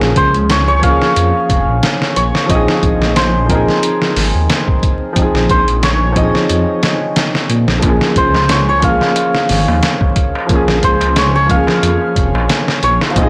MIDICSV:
0, 0, Header, 1, 6, 480
1, 0, Start_track
1, 0, Key_signature, -5, "minor"
1, 0, Tempo, 666667
1, 1798, Time_signature, 4, 2, 24, 8
1, 9571, End_track
2, 0, Start_track
2, 0, Title_t, "Santur"
2, 0, Program_c, 0, 15
2, 0, Note_on_c, 0, 73, 87
2, 0, Note_on_c, 0, 77, 99
2, 124, Note_on_c, 0, 72, 102
2, 167, Note_off_c, 0, 73, 0
2, 188, Note_off_c, 0, 72, 0
2, 281, Note_off_c, 0, 77, 0
2, 365, Note_on_c, 0, 73, 93
2, 487, Note_off_c, 0, 73, 0
2, 489, Note_on_c, 0, 73, 96
2, 598, Note_on_c, 0, 77, 108
2, 1556, Note_off_c, 0, 73, 0
2, 1559, Note_on_c, 0, 73, 88
2, 1798, Note_on_c, 0, 75, 97
2, 2196, Note_off_c, 0, 77, 0
2, 2276, Note_on_c, 0, 72, 84
2, 2319, Note_off_c, 0, 73, 0
2, 2519, Note_on_c, 0, 70, 76
2, 3511, Note_off_c, 0, 75, 0
2, 3960, Note_off_c, 0, 72, 0
2, 3963, Note_on_c, 0, 72, 98
2, 4027, Note_off_c, 0, 72, 0
2, 4199, Note_on_c, 0, 73, 95
2, 4442, Note_on_c, 0, 75, 99
2, 4556, Note_off_c, 0, 70, 0
2, 5886, Note_on_c, 0, 72, 92
2, 5929, Note_off_c, 0, 73, 0
2, 6125, Note_on_c, 0, 73, 82
2, 6154, Note_off_c, 0, 75, 0
2, 6168, Note_off_c, 0, 72, 0
2, 6253, Note_off_c, 0, 73, 0
2, 6256, Note_on_c, 0, 73, 96
2, 6364, Note_on_c, 0, 77, 103
2, 7806, Note_on_c, 0, 72, 99
2, 7849, Note_off_c, 0, 73, 0
2, 7962, Note_off_c, 0, 77, 0
2, 8050, Note_on_c, 0, 73, 96
2, 8093, Note_off_c, 0, 72, 0
2, 8173, Note_off_c, 0, 73, 0
2, 8176, Note_on_c, 0, 73, 99
2, 8283, Note_on_c, 0, 77, 113
2, 9240, Note_off_c, 0, 73, 0
2, 9243, Note_on_c, 0, 73, 96
2, 9294, Note_off_c, 0, 73, 0
2, 9431, Note_off_c, 0, 77, 0
2, 9434, Note_on_c, 0, 77, 74
2, 9487, Note_on_c, 0, 75, 95
2, 9571, Note_off_c, 0, 75, 0
2, 9571, Note_off_c, 0, 77, 0
2, 9571, End_track
3, 0, Start_track
3, 0, Title_t, "Upright piano"
3, 0, Program_c, 1, 0
3, 0, Control_c, 1, 64, 127
3, 0, Note_on_c, 1, 53, 88
3, 0, Note_on_c, 1, 58, 76
3, 0, Note_on_c, 1, 61, 85
3, 0, Note_on_c, 1, 68, 96
3, 558, Note_off_c, 1, 53, 0
3, 570, Note_off_c, 1, 58, 0
3, 572, Note_on_c, 1, 53, 87
3, 580, Note_off_c, 1, 61, 0
3, 591, Note_off_c, 1, 68, 0
3, 595, Note_on_c, 1, 58, 79
3, 615, Note_on_c, 1, 61, 78
3, 638, Note_on_c, 1, 68, 99
3, 1759, Note_off_c, 1, 53, 0
3, 1770, Note_off_c, 1, 58, 0
3, 1772, Note_on_c, 1, 53, 91
3, 1780, Note_off_c, 1, 61, 0
3, 1792, Note_off_c, 1, 68, 0
3, 1793, Note_on_c, 1, 60, 86
3, 1807, Control_c, 1, 64, 0
3, 1816, Note_on_c, 1, 63, 85
3, 1837, Note_on_c, 1, 68, 99
3, 1928, Control_c, 1, 64, 127
3, 2479, Note_off_c, 1, 53, 0
3, 2489, Note_off_c, 1, 60, 0
3, 2491, Note_on_c, 1, 53, 86
3, 2501, Note_off_c, 1, 63, 0
3, 2511, Note_off_c, 1, 68, 0
3, 2513, Note_on_c, 1, 60, 75
3, 2536, Note_on_c, 1, 63, 82
3, 2557, Note_on_c, 1, 68, 98
3, 3678, Note_off_c, 1, 53, 0
3, 3689, Note_off_c, 1, 60, 0
3, 3692, Note_on_c, 1, 53, 90
3, 3701, Note_off_c, 1, 63, 0
3, 3711, Note_off_c, 1, 68, 0
3, 3714, Note_on_c, 1, 60, 77
3, 3735, Note_on_c, 1, 63, 82
3, 3757, Note_on_c, 1, 68, 94
3, 4397, Note_off_c, 1, 53, 0
3, 4408, Note_on_c, 1, 53, 92
3, 4410, Note_off_c, 1, 60, 0
3, 4420, Note_off_c, 1, 63, 0
3, 4431, Note_off_c, 1, 68, 0
3, 4431, Note_on_c, 1, 60, 80
3, 4452, Note_on_c, 1, 63, 77
3, 4475, Note_on_c, 1, 68, 91
3, 5597, Note_off_c, 1, 53, 0
3, 5608, Note_off_c, 1, 60, 0
3, 5612, Note_on_c, 1, 53, 89
3, 5619, Note_off_c, 1, 63, 0
3, 5630, Note_off_c, 1, 68, 0
3, 5634, Note_on_c, 1, 58, 81
3, 5647, Control_c, 1, 64, 0
3, 5656, Note_on_c, 1, 61, 79
3, 5679, Note_on_c, 1, 68, 94
3, 5751, Control_c, 1, 64, 127
3, 6319, Note_off_c, 1, 53, 0
3, 6330, Note_off_c, 1, 58, 0
3, 6331, Note_on_c, 1, 53, 85
3, 6340, Note_off_c, 1, 61, 0
3, 6352, Note_off_c, 1, 68, 0
3, 6352, Note_on_c, 1, 58, 80
3, 6376, Note_on_c, 1, 61, 77
3, 6396, Note_on_c, 1, 68, 93
3, 7518, Note_off_c, 1, 53, 0
3, 7529, Note_off_c, 1, 58, 0
3, 7534, Note_on_c, 1, 53, 90
3, 7541, Note_off_c, 1, 61, 0
3, 7551, Note_off_c, 1, 68, 0
3, 7556, Note_on_c, 1, 58, 84
3, 7577, Note_on_c, 1, 61, 84
3, 7600, Note_on_c, 1, 68, 103
3, 8240, Note_off_c, 1, 53, 0
3, 8251, Note_off_c, 1, 58, 0
3, 8255, Note_on_c, 1, 53, 85
3, 8261, Note_off_c, 1, 61, 0
3, 8273, Note_off_c, 1, 68, 0
3, 8275, Note_on_c, 1, 58, 79
3, 8297, Note_on_c, 1, 61, 78
3, 8319, Note_on_c, 1, 68, 98
3, 9440, Note_off_c, 1, 53, 0
3, 9450, Note_off_c, 1, 58, 0
3, 9454, Note_on_c, 1, 53, 93
3, 9461, Note_off_c, 1, 61, 0
3, 9472, Note_off_c, 1, 68, 0
3, 9476, Note_on_c, 1, 60, 84
3, 9487, Control_c, 1, 64, 0
3, 9498, Note_on_c, 1, 63, 84
3, 9519, Note_on_c, 1, 68, 106
3, 9571, Note_off_c, 1, 53, 0
3, 9571, Note_off_c, 1, 60, 0
3, 9571, Note_off_c, 1, 63, 0
3, 9571, Note_off_c, 1, 68, 0
3, 9571, End_track
4, 0, Start_track
4, 0, Title_t, "Detuned saw bass"
4, 0, Program_c, 2, 39
4, 7, Note_on_c, 2, 34, 85
4, 104, Note_off_c, 2, 34, 0
4, 116, Note_on_c, 2, 37, 84
4, 703, Note_off_c, 2, 37, 0
4, 839, Note_on_c, 2, 41, 96
4, 954, Note_off_c, 2, 41, 0
4, 1075, Note_on_c, 2, 29, 103
4, 1192, Note_off_c, 2, 29, 0
4, 1211, Note_on_c, 2, 34, 95
4, 1305, Note_off_c, 2, 34, 0
4, 1560, Note_on_c, 2, 34, 88
4, 1674, Note_off_c, 2, 34, 0
4, 1796, Note_on_c, 2, 34, 102
4, 1912, Note_off_c, 2, 34, 0
4, 2036, Note_on_c, 2, 34, 93
4, 2623, Note_off_c, 2, 34, 0
4, 2998, Note_on_c, 2, 32, 96
4, 3113, Note_off_c, 2, 32, 0
4, 3130, Note_on_c, 2, 39, 97
4, 3225, Note_off_c, 2, 39, 0
4, 3848, Note_on_c, 2, 34, 88
4, 3944, Note_off_c, 2, 34, 0
4, 3954, Note_on_c, 2, 34, 88
4, 4542, Note_off_c, 2, 34, 0
4, 4677, Note_on_c, 2, 41, 99
4, 4793, Note_off_c, 2, 41, 0
4, 5397, Note_on_c, 2, 46, 98
4, 5513, Note_off_c, 2, 46, 0
4, 5528, Note_on_c, 2, 34, 92
4, 5624, Note_off_c, 2, 34, 0
4, 5636, Note_on_c, 2, 34, 101
4, 5753, Note_off_c, 2, 34, 0
4, 5876, Note_on_c, 2, 37, 90
4, 6463, Note_off_c, 2, 37, 0
4, 6839, Note_on_c, 2, 32, 98
4, 6954, Note_off_c, 2, 32, 0
4, 6970, Note_on_c, 2, 39, 98
4, 7065, Note_off_c, 2, 39, 0
4, 7688, Note_on_c, 2, 34, 85
4, 7784, Note_off_c, 2, 34, 0
4, 7796, Note_on_c, 2, 37, 92
4, 8383, Note_off_c, 2, 37, 0
4, 8517, Note_on_c, 2, 41, 93
4, 8633, Note_off_c, 2, 41, 0
4, 8756, Note_on_c, 2, 29, 100
4, 8872, Note_off_c, 2, 29, 0
4, 8887, Note_on_c, 2, 34, 97
4, 8984, Note_off_c, 2, 34, 0
4, 9238, Note_on_c, 2, 34, 84
4, 9353, Note_off_c, 2, 34, 0
4, 9475, Note_on_c, 2, 34, 99
4, 9571, Note_off_c, 2, 34, 0
4, 9571, End_track
5, 0, Start_track
5, 0, Title_t, "Darbuka"
5, 5639, Note_on_c, 9, 63, 70
5, 5711, Note_off_c, 9, 63, 0
5, 5772, Note_on_c, 9, 63, 39
5, 5844, Note_off_c, 9, 63, 0
5, 6012, Note_on_c, 9, 63, 83
5, 6084, Note_off_c, 9, 63, 0
5, 6114, Note_on_c, 9, 63, 66
5, 6186, Note_off_c, 9, 63, 0
5, 6246, Note_on_c, 9, 63, 39
5, 6318, Note_off_c, 9, 63, 0
5, 6493, Note_on_c, 9, 63, 78
5, 6565, Note_off_c, 9, 63, 0
5, 6595, Note_on_c, 9, 63, 63
5, 6667, Note_off_c, 9, 63, 0
5, 6734, Note_on_c, 9, 63, 41
5, 6806, Note_off_c, 9, 63, 0
5, 6972, Note_on_c, 9, 63, 75
5, 6972, Note_on_c, 9, 64, 78
5, 7044, Note_off_c, 9, 63, 0
5, 7044, Note_off_c, 9, 64, 0
5, 7079, Note_on_c, 9, 63, 63
5, 7151, Note_off_c, 9, 63, 0
5, 7210, Note_on_c, 9, 63, 41
5, 7282, Note_off_c, 9, 63, 0
5, 7455, Note_on_c, 9, 63, 78
5, 7527, Note_off_c, 9, 63, 0
5, 7562, Note_on_c, 9, 63, 59
5, 7634, Note_off_c, 9, 63, 0
5, 7688, Note_on_c, 9, 63, 38
5, 7760, Note_off_c, 9, 63, 0
5, 7925, Note_on_c, 9, 63, 75
5, 7997, Note_off_c, 9, 63, 0
5, 8037, Note_on_c, 9, 63, 62
5, 8109, Note_off_c, 9, 63, 0
5, 8171, Note_on_c, 9, 63, 40
5, 8243, Note_off_c, 9, 63, 0
5, 8283, Note_on_c, 9, 64, 68
5, 8355, Note_off_c, 9, 64, 0
5, 8404, Note_on_c, 9, 63, 78
5, 8410, Note_on_c, 9, 64, 72
5, 8476, Note_off_c, 9, 63, 0
5, 8482, Note_off_c, 9, 64, 0
5, 8515, Note_on_c, 9, 63, 60
5, 8587, Note_off_c, 9, 63, 0
5, 8651, Note_on_c, 9, 63, 35
5, 8723, Note_off_c, 9, 63, 0
5, 8892, Note_on_c, 9, 63, 89
5, 8964, Note_off_c, 9, 63, 0
5, 8998, Note_on_c, 9, 63, 58
5, 9070, Note_off_c, 9, 63, 0
5, 9132, Note_on_c, 9, 63, 41
5, 9204, Note_off_c, 9, 63, 0
5, 9372, Note_on_c, 9, 63, 80
5, 9444, Note_off_c, 9, 63, 0
5, 9479, Note_on_c, 9, 63, 61
5, 9551, Note_off_c, 9, 63, 0
5, 9571, End_track
6, 0, Start_track
6, 0, Title_t, "Drums"
6, 10, Note_on_c, 9, 38, 54
6, 82, Note_off_c, 9, 38, 0
6, 115, Note_on_c, 9, 36, 98
6, 115, Note_on_c, 9, 42, 70
6, 187, Note_off_c, 9, 36, 0
6, 187, Note_off_c, 9, 42, 0
6, 248, Note_on_c, 9, 42, 42
6, 320, Note_off_c, 9, 42, 0
6, 357, Note_on_c, 9, 42, 92
6, 360, Note_on_c, 9, 38, 118
6, 429, Note_off_c, 9, 42, 0
6, 432, Note_off_c, 9, 38, 0
6, 596, Note_on_c, 9, 36, 102
6, 598, Note_on_c, 9, 42, 72
6, 668, Note_off_c, 9, 36, 0
6, 670, Note_off_c, 9, 42, 0
6, 731, Note_on_c, 9, 38, 47
6, 803, Note_off_c, 9, 38, 0
6, 838, Note_on_c, 9, 42, 91
6, 910, Note_off_c, 9, 42, 0
6, 1076, Note_on_c, 9, 36, 88
6, 1078, Note_on_c, 9, 42, 68
6, 1148, Note_off_c, 9, 36, 0
6, 1150, Note_off_c, 9, 42, 0
6, 1317, Note_on_c, 9, 42, 83
6, 1319, Note_on_c, 9, 38, 111
6, 1389, Note_off_c, 9, 42, 0
6, 1391, Note_off_c, 9, 38, 0
6, 1452, Note_on_c, 9, 38, 53
6, 1524, Note_off_c, 9, 38, 0
6, 1558, Note_on_c, 9, 42, 74
6, 1630, Note_off_c, 9, 42, 0
6, 1691, Note_on_c, 9, 38, 56
6, 1763, Note_off_c, 9, 38, 0
6, 1796, Note_on_c, 9, 36, 111
6, 1797, Note_on_c, 9, 42, 85
6, 1868, Note_off_c, 9, 36, 0
6, 1869, Note_off_c, 9, 42, 0
6, 1932, Note_on_c, 9, 38, 57
6, 2004, Note_off_c, 9, 38, 0
6, 2036, Note_on_c, 9, 36, 99
6, 2037, Note_on_c, 9, 42, 68
6, 2108, Note_off_c, 9, 36, 0
6, 2109, Note_off_c, 9, 42, 0
6, 2172, Note_on_c, 9, 38, 44
6, 2244, Note_off_c, 9, 38, 0
6, 2276, Note_on_c, 9, 42, 88
6, 2279, Note_on_c, 9, 38, 115
6, 2348, Note_off_c, 9, 42, 0
6, 2351, Note_off_c, 9, 38, 0
6, 2516, Note_on_c, 9, 36, 98
6, 2517, Note_on_c, 9, 42, 70
6, 2588, Note_off_c, 9, 36, 0
6, 2589, Note_off_c, 9, 42, 0
6, 2652, Note_on_c, 9, 38, 37
6, 2724, Note_off_c, 9, 38, 0
6, 2757, Note_on_c, 9, 42, 97
6, 2829, Note_off_c, 9, 42, 0
6, 2892, Note_on_c, 9, 38, 49
6, 2964, Note_off_c, 9, 38, 0
6, 2999, Note_on_c, 9, 46, 81
6, 3001, Note_on_c, 9, 38, 37
6, 3071, Note_off_c, 9, 46, 0
6, 3073, Note_off_c, 9, 38, 0
6, 3237, Note_on_c, 9, 42, 86
6, 3240, Note_on_c, 9, 38, 119
6, 3309, Note_off_c, 9, 42, 0
6, 3312, Note_off_c, 9, 38, 0
6, 3368, Note_on_c, 9, 36, 91
6, 3440, Note_off_c, 9, 36, 0
6, 3476, Note_on_c, 9, 36, 93
6, 3477, Note_on_c, 9, 42, 69
6, 3548, Note_off_c, 9, 36, 0
6, 3549, Note_off_c, 9, 42, 0
6, 3716, Note_on_c, 9, 36, 104
6, 3716, Note_on_c, 9, 42, 88
6, 3788, Note_off_c, 9, 36, 0
6, 3788, Note_off_c, 9, 42, 0
6, 3851, Note_on_c, 9, 38, 54
6, 3923, Note_off_c, 9, 38, 0
6, 3956, Note_on_c, 9, 36, 92
6, 3956, Note_on_c, 9, 42, 70
6, 4028, Note_off_c, 9, 36, 0
6, 4028, Note_off_c, 9, 42, 0
6, 4089, Note_on_c, 9, 42, 43
6, 4161, Note_off_c, 9, 42, 0
6, 4196, Note_on_c, 9, 42, 89
6, 4199, Note_on_c, 9, 38, 117
6, 4268, Note_off_c, 9, 42, 0
6, 4271, Note_off_c, 9, 38, 0
6, 4436, Note_on_c, 9, 36, 103
6, 4436, Note_on_c, 9, 42, 73
6, 4508, Note_off_c, 9, 36, 0
6, 4508, Note_off_c, 9, 42, 0
6, 4572, Note_on_c, 9, 38, 46
6, 4644, Note_off_c, 9, 38, 0
6, 4676, Note_on_c, 9, 42, 94
6, 4748, Note_off_c, 9, 42, 0
6, 4916, Note_on_c, 9, 42, 74
6, 4919, Note_on_c, 9, 38, 102
6, 4988, Note_off_c, 9, 42, 0
6, 4991, Note_off_c, 9, 38, 0
6, 5156, Note_on_c, 9, 42, 85
6, 5159, Note_on_c, 9, 38, 112
6, 5228, Note_off_c, 9, 42, 0
6, 5231, Note_off_c, 9, 38, 0
6, 5291, Note_on_c, 9, 38, 56
6, 5363, Note_off_c, 9, 38, 0
6, 5397, Note_on_c, 9, 42, 72
6, 5469, Note_off_c, 9, 42, 0
6, 5529, Note_on_c, 9, 38, 56
6, 5601, Note_off_c, 9, 38, 0
6, 5634, Note_on_c, 9, 42, 86
6, 5635, Note_on_c, 9, 36, 109
6, 5706, Note_off_c, 9, 42, 0
6, 5707, Note_off_c, 9, 36, 0
6, 5769, Note_on_c, 9, 38, 59
6, 5841, Note_off_c, 9, 38, 0
6, 5875, Note_on_c, 9, 42, 65
6, 5876, Note_on_c, 9, 36, 97
6, 5947, Note_off_c, 9, 42, 0
6, 5948, Note_off_c, 9, 36, 0
6, 6008, Note_on_c, 9, 38, 41
6, 6080, Note_off_c, 9, 38, 0
6, 6114, Note_on_c, 9, 42, 96
6, 6117, Note_on_c, 9, 38, 125
6, 6186, Note_off_c, 9, 42, 0
6, 6189, Note_off_c, 9, 38, 0
6, 6353, Note_on_c, 9, 42, 73
6, 6355, Note_on_c, 9, 36, 100
6, 6425, Note_off_c, 9, 42, 0
6, 6427, Note_off_c, 9, 36, 0
6, 6488, Note_on_c, 9, 38, 38
6, 6560, Note_off_c, 9, 38, 0
6, 6594, Note_on_c, 9, 42, 98
6, 6666, Note_off_c, 9, 42, 0
6, 6728, Note_on_c, 9, 38, 46
6, 6800, Note_off_c, 9, 38, 0
6, 6834, Note_on_c, 9, 46, 75
6, 6837, Note_on_c, 9, 38, 36
6, 6906, Note_off_c, 9, 46, 0
6, 6909, Note_off_c, 9, 38, 0
6, 7075, Note_on_c, 9, 42, 82
6, 7078, Note_on_c, 9, 38, 113
6, 7147, Note_off_c, 9, 42, 0
6, 7150, Note_off_c, 9, 38, 0
6, 7207, Note_on_c, 9, 36, 102
6, 7279, Note_off_c, 9, 36, 0
6, 7315, Note_on_c, 9, 36, 99
6, 7315, Note_on_c, 9, 42, 73
6, 7387, Note_off_c, 9, 36, 0
6, 7387, Note_off_c, 9, 42, 0
6, 7555, Note_on_c, 9, 36, 107
6, 7555, Note_on_c, 9, 42, 83
6, 7627, Note_off_c, 9, 36, 0
6, 7627, Note_off_c, 9, 42, 0
6, 7690, Note_on_c, 9, 38, 53
6, 7762, Note_off_c, 9, 38, 0
6, 7796, Note_on_c, 9, 36, 96
6, 7796, Note_on_c, 9, 42, 66
6, 7868, Note_off_c, 9, 36, 0
6, 7868, Note_off_c, 9, 42, 0
6, 7929, Note_on_c, 9, 42, 42
6, 8001, Note_off_c, 9, 42, 0
6, 8036, Note_on_c, 9, 42, 94
6, 8039, Note_on_c, 9, 38, 111
6, 8108, Note_off_c, 9, 42, 0
6, 8111, Note_off_c, 9, 38, 0
6, 8276, Note_on_c, 9, 36, 104
6, 8277, Note_on_c, 9, 42, 75
6, 8348, Note_off_c, 9, 36, 0
6, 8349, Note_off_c, 9, 42, 0
6, 8411, Note_on_c, 9, 38, 46
6, 8483, Note_off_c, 9, 38, 0
6, 8518, Note_on_c, 9, 42, 96
6, 8590, Note_off_c, 9, 42, 0
6, 8756, Note_on_c, 9, 36, 88
6, 8758, Note_on_c, 9, 42, 65
6, 8828, Note_off_c, 9, 36, 0
6, 8830, Note_off_c, 9, 42, 0
6, 8996, Note_on_c, 9, 42, 91
6, 8999, Note_on_c, 9, 38, 114
6, 9068, Note_off_c, 9, 42, 0
6, 9071, Note_off_c, 9, 38, 0
6, 9131, Note_on_c, 9, 38, 55
6, 9203, Note_off_c, 9, 38, 0
6, 9235, Note_on_c, 9, 42, 71
6, 9307, Note_off_c, 9, 42, 0
6, 9370, Note_on_c, 9, 38, 56
6, 9442, Note_off_c, 9, 38, 0
6, 9475, Note_on_c, 9, 36, 109
6, 9475, Note_on_c, 9, 42, 93
6, 9547, Note_off_c, 9, 36, 0
6, 9547, Note_off_c, 9, 42, 0
6, 9571, End_track
0, 0, End_of_file